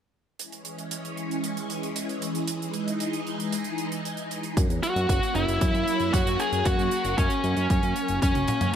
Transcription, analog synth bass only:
4.57 4.68 F#2 medium
4.70 4.81 E2 medium
4.96 5.07 F#2 medium
5.09 5.20 F#1 loud
5.35 5.46 F#1 loud
5.48 5.59 F#1 medium
5.61 5.72 F#2 loud
5.74 5.85 F#2 medium
6.00 6.11 F#2 medium
6.14 6.24 F#2 medium
6.26 6.37 F#2 medium
6.52 6.63 F#2 medium
6.66 6.77 F#2 loud
6.79 6.90 F#2 medium
7.05 7.16 F#1 medium
7.18 7.29 F#2 medium
7.44 7.55 F#2 medium
7.57 7.68 F#2 medium
7.70 7.81 F#2 loud
7.83 7.94 F#2 medium
8.09 8.20 F#1 medium
8.22 8.33 F#2 loud
8.35 8.46 F#1 medium
8.61 8.72 F#2 medium

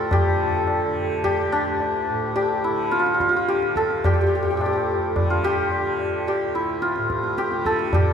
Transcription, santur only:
0.00 2.36 F4 medium
0.00 0.12 G4 medium
0.00 2.77 A4 medium
0.12 1.24 G4 medium
1.24 2.35 G4 medium
1.52 5.26 D4 medium
2.36 3.48 G4 medium
2.64 2.97 E4 medium
2.91 2.99 F4 medium
2.99 3.06 F4 medium
3.06 3.14 F4 medium
3.14 3.21 F4 soft
3.21 3.29 F4 medium
3.29 3.36 F4 medium
3.36 5.30 F4 medium
3.48 4.05 G4 medium
3.77 6.70 A4 medium
4.05 4.13 G4 medium
4.13 4.21 G4 soft
4.21 4.26 G4 medium
4.27 4.35 G4 soft
4.35 4.42 G4 soft
4.43 4.50 G4 soft
4.50 4.57 G4 medium
4.57 4.65 G4 soft
4.66 4.73 G4 medium
4.73 5.44 G4 soft
5.30 6.61 F4 medium
5.44 6.28 G4 medium
6.28 7.38 G4 medium
6.55 6.88 E4 medium
6.82 8.13 F4 medium
7.38 7.94 G4 medium
7.66 8.13 A4 medium
7.94 8.13 G4 medium

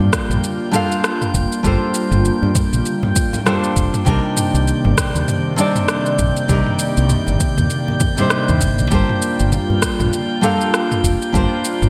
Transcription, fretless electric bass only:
0.30 0.38 A#1 medium
1.34 1.45 F1 medium
1.64 1.75 G1 medium
2.11 2.28 G1 medium
2.42 2.50 G2 medium
2.73 2.81 A#1 medium
3.77 3.87 F1 medium
4.07 4.17 C2 medium
4.54 4.71 C2 medium
4.85 4.93 G1 medium
5.15 5.23 D#2 medium
6.19 6.30 A#1 medium
6.49 6.60 C2 medium
6.98 7.14 C2 medium
7.28 7.35 G1 medium
7.58 7.66 D#2 medium
8.49 8.63 D#2 medium
8.61 8.81 G1 medium
8.79 8.87 C2 medium
8.92 9.02 G1 medium
9.40 9.56 G1 medium
9.70 9.78 G2 medium
10.00 10.08 A#1 medium
11.04 11.14 F1 medium
11.34 11.45 G1 loud
11.82 11.89 G1 medium

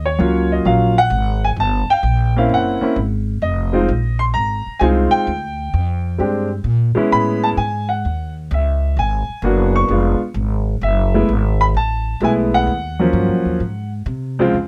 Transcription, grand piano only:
0.06 0.52 C#5 medium
0.19 0.64 F#3 medium
0.19 0.64 A#3 medium
0.19 0.65 C#4 medium
0.19 0.65 F4 medium
0.52 0.67 D#5 medium
0.65 0.94 F#3 medium
0.65 0.94 A#3 medium
0.65 0.94 C#4 medium
0.65 0.95 F4 medium
0.65 0.98 F5 medium
0.98 1.41 F#5 loud
1.44 1.49 G#5 loud
1.60 1.89 A5 loud
1.90 1.94 F5 medium
1.90 2.33 G5 loud
2.36 2.79 A#3 medium
2.36 2.79 C4 medium
2.36 2.80 C#4 medium
2.36 2.80 E4 medium
2.36 2.51 F5 medium
2.54 2.95 F#5 medium
2.81 2.95 A#3 medium
2.81 2.95 C4 medium
2.81 2.95 C#4 medium
2.81 2.96 E4 medium
3.42 4.16 D#5 medium
3.73 3.87 G#3 medium
3.73 3.87 C4 medium
3.73 3.88 D#4 medium
3.73 3.88 F4 medium
4.19 4.24 C6 medium
4.34 4.82 A#5 medium
4.79 5.27 G#3 medium
4.79 5.28 C4 medium
4.79 5.28 D#4 medium
4.79 5.28 F4 medium
4.79 4.87 G#5 medium
5.11 6.46 G5 loud
6.18 6.47 G#3 medium
6.18 6.47 C4 medium
6.18 6.48 D4 medium
6.18 6.48 G4 medium
6.95 7.54 G#3 medium
6.95 7.55 B3 medium
6.95 7.55 C#4 medium
6.95 7.56 E4 medium
7.12 7.45 B5 loud
7.44 7.49 A5 loud
7.57 7.87 G#5 medium
7.89 8.32 F#5 medium
8.54 9.00 E5 medium
8.99 9.72 G#5 medium
9.44 9.89 A#3 medium
9.44 9.89 B3 medium
9.44 9.89 D4 medium
9.44 9.89 F#4 medium
9.76 10.19 C#6 medium
9.90 10.18 G#3 medium
9.90 10.18 B3 medium
9.90 10.19 D4 medium
9.90 10.19 F4 medium
10.83 11.63 E5 medium
11.14 11.28 G#3 medium
11.14 11.28 A3 medium
11.14 11.28 B3 medium
11.14 11.28 E4 medium
11.61 11.66 B5 medium
11.77 12.19 A5 loud
12.22 12.68 G#3 medium
12.22 12.69 A3 medium
12.22 12.69 B3 medium
12.22 12.69 E4 medium
12.22 12.31 G#5 medium
12.54 13.89 F#5 medium
12.99 13.59 F3 medium
12.99 13.58 F#3 medium
12.99 13.59 A#3 medium
12.99 13.59 C#4 medium
14.39 14.53 C#2 medium
14.39 14.53 F3 medium
14.39 14.53 G#3 medium
14.39 14.54 C4 medium
14.39 14.54 F4 medium

